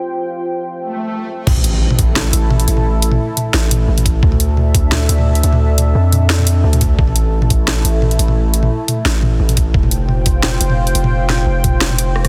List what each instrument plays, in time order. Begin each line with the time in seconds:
Already playing: analog synth pad F4 C5 G5
0.78 swell
1.47 808-style bass A1, analog synth pad A3 E4 A4, kick, crash, impact
1.56 mid tom
1.64 closed hi-hat
1.91 mid tom
1.99 808-style bass A1, kick, closed hi-hat
2.16 snare, mid tom
2.33 808-style bass A1, closed hi-hat
2.50 mid tom
2.60 closed hi-hat
2.68 808-style bass A1, closed hi-hat
2.77 mid tom
3.02 closed hi-hat
3.12 mid tom
3.37 closed hi-hat, mid tom
3.54 808-style bass A1, snare
3.71 closed hi-hat, mid tom
3.88 808-style bass A1
3.98 closed hi-hat, mid tom
4.06 kick, closed hi-hat
4.23 808-style bass D2, analog synth pad D4 A4 E5, kick
4.32 mid tom
4.40 closed hi-hat
4.57 mid tom
4.74 808-style bass D2, kick, closed hi-hat
4.92 snare, mid tom
5.09 808-style bass D2, closed hi-hat
5.18 mid tom
5.24 mid tom
5.29 mid tom
5.35 closed hi-hat
5.43 808-style bass D2, closed hi-hat
5.53 mid tom
5.78 closed hi-hat, mid tom
5.95 808-style bass F2
6.12 closed hi-hat, mid tom
6.30 snare
6.39 mid tom
6.47 closed hi-hat
6.64 808-style bass D2
6.73 closed hi-hat, mid tom
6.81 kick, closed hi-hat
6.99 808-style bass A1, analog synth pad A3 E4, kick
7.08 mid tom
7.16 closed hi-hat
7.42 mid tom
7.50 808-style bass A1, kick, closed hi-hat
7.68 snare, mid tom
7.84 808-style bass A1, closed hi-hat
8.02 mid tom
8.11 closed hi-hat
8.19 808-style bass A1, closed hi-hat
8.28 mid tom
8.54 closed hi-hat
8.63 mid tom
8.88 closed hi-hat, mid tom
9.05 808-style bass A1, snare
9.23 mid tom
9.39 808-style bass A1
9.49 closed hi-hat, mid tom
9.57 kick, closed hi-hat
9.74 808-style bass F1, analog synth pad F4 C5 G5, kick
9.83 mid tom
9.91 closed hi-hat
10.09 mid tom
10.26 808-style bass F1, kick, closed hi-hat
10.43 snare, mid tom
10.61 808-style bass F1, closed hi-hat
10.70 mid tom
10.87 closed hi-hat
10.95 808-style bass F1, closed hi-hat
11.04 mid tom
11.29 snare, mid tom
11.46 808-style bass F1
11.64 kick, closed hi-hat, mid tom
11.81 snare
11.90 mid tom
11.98 closed hi-hat
12.16 cross-stick
12.25 cross-stick, closed hi-hat, mid tom